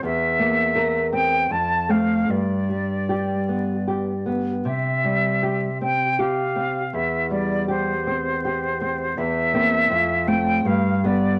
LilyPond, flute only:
\new Staff \with { instrumentName = "Flute" } { \time 3/4 \key c \major \tempo 4 = 79 e''4. g''8 a''8 f''8 | d''2~ d''8 r8 | e''4. g''8 f''4 | e''8 d''8 c''2 |
e''4. g''8 f''8 d''8 | }